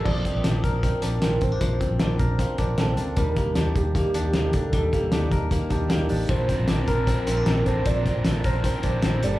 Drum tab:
CC |x-------|--------|--------|--------|
HH |-xxxxxxx|xxxxxxxx|xxxxxxxx|xxxxxxxo|
SD |--o---o-|--o---o-|--o---o-|--o---o-|
BD |oo-oo--o|oo-ooo--|oo-oo--o|oo-ooo--|

CC |--------|--------|
HH |xxxxxxxx|xxxxxxxx|
SD |--o---o-|--o---o-|
BD |oo-oo--o|oo-ooo--|